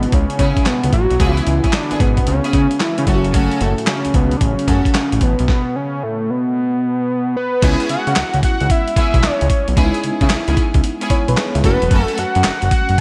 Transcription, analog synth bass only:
0.13 0.26 C#2 loud
0.39 0.53 C#3 loud
0.84 0.91 C#2 medium
0.93 1.07 A1 loud
1.11 1.18 B1 medium
1.20 1.41 C#2 loud
1.47 1.60 C#2 loud
1.91 1.95 G#1 soft
2.00 2.21 G#1 medium
2.28 2.41 C#2 medium
2.54 2.67 C#3 medium
2.99 3.05 C#3 medium
3.07 3.49 F#1 medium
3.61 3.75 F#1 loud
4.06 4.09 C#2 soft
4.14 4.35 C#2 medium
4.41 4.55 A1 medium
4.68 4.81 F#2 medium
5.13 5.20 A1 medium
5.21 5.35 A1 medium
5.40 5.47 B1 loud
7.63 7.76 C#2 loud
7.90 7.97 C#3 soft
8.07 8.14 C#3 medium
8.17 8.24 C#2 soft
8.34 8.41 C#2 loud
8.61 8.68 C#2 medium
8.97 9.04 B1 soft
9.14 9.21 B1 loud
9.42 9.49 C#2 loud
9.68 9.75 B1 medium
9.77 9.91 C#2 loud
10.04 10.11 C#3 soft
10.21 10.28 C#3 medium
10.31 10.38 C#2 soft
10.48 10.55 C#2 loud
10.75 10.82 C#2 medium
11.11 11.18 B1 soft
11.29 11.36 B1 medium
11.55 11.62 C#2 medium
11.64 11.78 F#1 loud
11.82 11.89 E1 medium
11.91 12.05 F#1 loud
12.19 12.25 F#2 medium
12.36 12.43 F#2 loud
12.45 12.52 F#1 soft
12.63 12.70 F#1 medium
12.90 12.97 F#1 loud

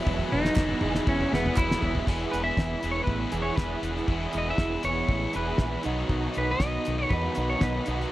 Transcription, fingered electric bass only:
0.07 0.22 E1 loud
0.33 0.48 E1 medium
0.57 0.72 E1 medium
0.83 0.98 E1 medium
1.07 1.23 E1 medium
1.32 1.48 E1 medium
1.58 1.73 E1 medium
1.83 1.98 E1 medium
2.08 2.24 E1 medium
2.33 2.50 E1 medium
2.58 2.74 E1 medium
2.84 3.00 E1 medium
3.08 3.24 A1 medium
3.32 3.49 E1 medium
3.58 3.74 E1 medium
3.82 3.99 E1 medium
4.09 4.25 E1 medium
4.34 4.51 E1 medium
4.59 4.75 E1 medium
4.84 5.01 E1 medium
5.08 5.25 A1 medium
5.35 5.52 E1 medium
5.59 5.76 A#1 medium
5.86 6.02 B1 medium
6.10 6.27 B1 medium
6.37 6.53 B1 medium
6.60 6.77 B1 medium
6.88 7.04 B1 medium
7.11 7.28 E2 medium
7.37 7.54 B1 medium
7.62 7.78 B1 medium
7.88 8.04 B1 medium

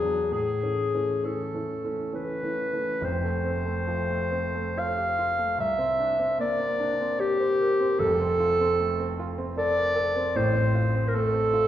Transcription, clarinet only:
0.00 0.33 G#4 medium
0.33 1.27 G#4 medium
1.25 2.14 A4 medium
2.15 3.06 B4 medium
3.04 4.80 C5 medium
4.79 5.60 F5 medium
5.60 6.39 E5 medium
6.40 7.22 D5 medium
7.20 8.01 G4 medium
7.99 9.31 A4 loud
9.58 10.38 D5 loud
10.36 11.10 C5 medium
11.08 11.17 A#4 medium
11.15 11.68 A4 loud

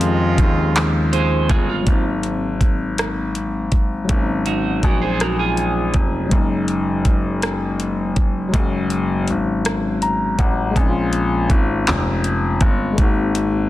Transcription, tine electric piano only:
0.00 1.80 D#3 medium
0.00 1.82 F3 medium
0.00 1.83 G#3 medium
0.00 1.84 C4 medium
0.00 1.89 C#4 medium
0.00 1.86 F4 medium
0.00 1.88 A#4 medium
1.82 4.03 F#3 medium
1.82 4.04 G#3 medium
1.87 4.05 A#3 medium
1.87 4.07 C4 medium
1.93 4.08 D#4 medium
4.04 6.25 F#3 medium
4.04 6.26 G#3 medium
4.10 6.28 A#3 medium
4.10 6.29 C4 medium
4.15 4.19 C#4 medium
4.22 6.34 D#4 medium
6.26 8.47 F#3 medium
6.26 8.49 G#3 medium
6.32 8.50 A#3 medium
6.32 8.51 C#4 medium
6.37 8.53 D#4 medium
8.49 10.69 F#3 medium
8.49 10.70 G#3 medium
8.54 10.72 A#3 medium
8.54 10.74 C#4 medium
8.60 10.75 F#4 medium
10.03 10.37 A#5 medium
10.39 10.74 F#5 medium
10.71 12.92 G#3 medium
10.71 12.93 A#3 medium
10.77 12.94 C4 medium
10.77 12.96 C#4 medium
10.82 10.86 D#4 medium
10.89 13.00 F4 medium
12.93 13.69 G#3 medium
12.93 13.69 A#3 medium
12.99 13.69 C4 medium
12.99 13.69 D#4 medium
13.04 13.69 F#4 medium

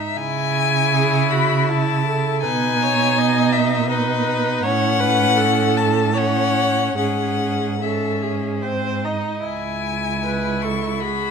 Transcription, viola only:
0.00 0.16 D#4 medium
0.94 1.28 G#4 medium
1.31 1.71 F#4 medium
1.70 2.06 E4 medium
2.07 2.45 A4 medium
2.43 2.84 B4 medium
2.82 3.20 C#5 medium
3.19 3.89 D#5 medium
3.90 4.65 B4 medium
4.63 5.01 C#5 medium
5.00 5.38 B4 medium
5.37 6.15 A4 medium
6.14 6.98 C#5 medium
6.98 7.72 G#4 medium
7.81 8.23 A4 medium
8.22 8.64 G#4 medium
8.62 9.07 C5 medium
9.05 9.45 D#5 medium
10.24 10.66 B4 medium
10.64 11.03 A4 medium
11.01 11.31 G#4 medium

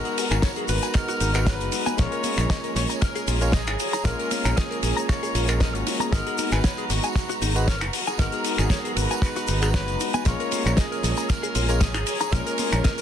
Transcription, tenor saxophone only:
0.00 0.42 A#4 loud
0.68 0.95 B4 loud
0.94 1.47 A#4 loud
1.46 1.99 B4 loud
1.98 2.75 C#5 loud
2.76 2.87 C#5 loud
3.01 3.50 A#4 loud
3.53 4.06 G#4 loud
4.05 4.30 A#4 loud
4.31 4.58 A#4 loud
4.57 4.82 G#4 loud
4.83 5.07 G#4 medium
5.09 5.62 C#5 loud
5.60 5.76 A#4 medium
5.74 6.02 F#4 medium
6.01 6.14 G#4 medium
6.13 6.52 A#4 loud
6.52 6.91 B4 loud
6.90 7.41 F#4 medium
7.68 7.83 A#4 medium
7.82 8.07 F#4 medium
8.07 8.19 G#4 medium
8.19 8.56 A#4 loud
8.59 8.98 G#4 loud
8.96 9.73 B4 loud
9.74 10.27 B4 loud
10.26 10.78 C#5 loud
10.77 11.31 G#4 loud
11.29 11.82 A#4 loud
11.81 12.34 G#4 loud
12.33 12.84 A#4 loud
12.84 13.02 A#4 loud

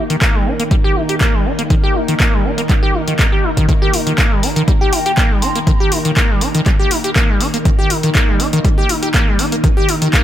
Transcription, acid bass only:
0.10 0.16 D#3 medium
0.21 0.36 A#3 medium
0.35 0.48 G3 medium
0.46 0.54 D#4 medium
0.60 0.63 A#3 medium
0.71 0.75 G3 loud
0.84 0.97 G4 loud
0.96 1.03 D#4 medium
1.09 1.16 G4 medium
1.21 1.35 A#3 medium
1.34 1.47 G3 medium
1.45 1.53 D#4 medium
1.59 1.63 A#3 medium
1.70 1.75 D#3 loud
1.83 1.97 G4 loud
1.95 2.02 D#4 medium
2.08 2.15 D#3 medium
2.20 2.35 A#3 medium
2.33 2.46 G3 medium
2.45 2.52 D#4 medium
2.58 2.62 A#3 medium
2.69 2.74 G3 loud
2.83 2.96 G4 loud
2.94 3.02 D#4 medium
3.08 3.14 D#3 medium
3.19 3.26 A#3 medium
3.32 3.45 G4 medium
3.44 3.51 D#4 loud
3.57 3.67 D#3 loud
3.68 3.73 D#3 loud
3.82 3.95 G4 loud
3.93 4.01 D#4 medium
4.07 4.13 D#3 medium
4.18 4.33 A#3 medium
4.31 4.44 G3 medium
4.43 4.50 D#4 medium
4.56 4.63 D#3 loud
4.68 4.72 G3 loud
4.81 4.94 G4 loud
4.92 5.00 D#4 medium
5.06 5.12 G4 medium
5.17 5.32 A#3 medium
5.31 5.44 G3 medium
5.42 5.50 D#4 medium
5.55 5.59 A#3 medium
5.67 5.71 D#3 loud
5.80 5.93 G4 loud
5.92 5.99 D#4 medium
6.05 6.11 D#3 medium
6.17 6.31 A#3 medium
6.30 6.43 G3 medium
6.41 6.49 D#4 medium
6.55 6.61 D#3 loud
6.66 6.71 G3 loud
6.79 6.92 G4 loud
6.91 6.98 D#4 medium
7.04 7.11 G4 medium
7.16 7.31 A#3 medium
7.29 7.42 G3 medium
7.41 7.48 D#4 medium
7.54 7.58 A#3 medium
7.65 7.70 D#3 loud
7.79 7.92 G4 loud
7.90 7.98 D#4 medium
8.03 8.10 D#3 medium
8.15 8.30 A#3 medium
8.28 8.41 G3 medium
8.40 8.47 D#4 medium
8.53 8.59 D#3 loud
8.65 8.69 G3 loud
8.78 8.91 G4 loud
8.89 8.97 D#4 medium
9.03 9.09 G4 medium
9.14 9.29 A#3 medium
9.27 9.40 G3 medium
9.39 9.46 D#4 medium
9.52 9.56 A#3 medium
9.64 9.68 D#3 loud
9.77 9.90 G4 loud
9.88 9.96 D#4 medium
10.02 10.08 D#3 medium
10.13 10.24 A#3 medium

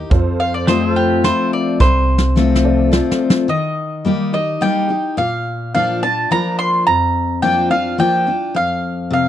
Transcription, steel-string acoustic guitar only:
0.00 0.11 D#4 soft
0.11 1.18 F2 medium
0.67 1.21 F3 medium
0.67 1.21 A3 medium
0.67 1.21 C4 loud
0.67 1.22 F4 loud
1.24 1.77 F3 medium
1.24 1.78 A3 medium
1.24 1.78 C4 medium
1.24 1.78 F4 medium
1.80 2.87 C3 medium
2.36 2.90 F3 medium
2.36 2.90 A3 medium
2.36 2.90 C4 medium
2.36 2.90 F4 loud
2.91 3.46 F3 medium
2.91 3.46 A3 medium
2.91 3.46 C4 medium
2.91 3.46 F4 medium
3.48 4.56 D#3 medium
4.05 4.32 G3 medium
4.05 4.33 A#3 medium
4.05 4.33 D#4 medium
4.05 4.32 G4 loud
4.33 4.61 D#4 medium
4.33 4.60 G4 medium
4.61 4.88 G3 medium
4.61 4.89 A#3 medium
4.61 4.89 D#4 medium
4.61 4.87 G4 medium
4.89 5.17 D#4 medium
4.89 5.16 G4 medium
5.17 6.25 A#2 medium
5.74 6.01 F3 medium
5.74 6.02 A#3 loud
5.74 6.02 D4 loud
5.74 6.01 F4 medium
6.03 6.30 D4 soft
6.03 6.30 F4 medium
6.31 6.84 F3 medium
6.31 6.84 A#3 medium
6.31 6.85 D4 loud
6.31 6.85 F4 loud
6.87 7.94 F2 medium
7.42 7.70 F3 medium
7.42 7.70 A#3 loud
7.42 7.70 D4 medium
7.42 7.69 F4 medium
7.70 7.98 D4 medium
7.70 7.98 F4 medium
7.98 8.26 F3 medium
7.98 8.26 A#3 medium
7.98 8.26 D4 medium
7.98 8.25 F4 medium
8.27 8.55 D4 medium
8.27 8.54 F4 medium
8.54 9.29 F2 medium
9.10 9.29 C3 medium

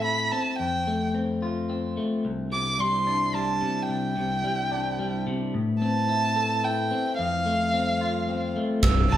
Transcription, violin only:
0.04 0.33 B5 soft
0.32 0.58 A5 soft
0.59 1.10 G5 soft
2.53 2.81 D6 soft
2.80 3.36 C6 medium
3.35 3.89 A5 soft
3.90 5.23 G5 soft
5.81 6.66 A5 medium
6.64 7.19 G5 soft
7.19 8.52 F5 medium
9.11 9.17 A5 medium

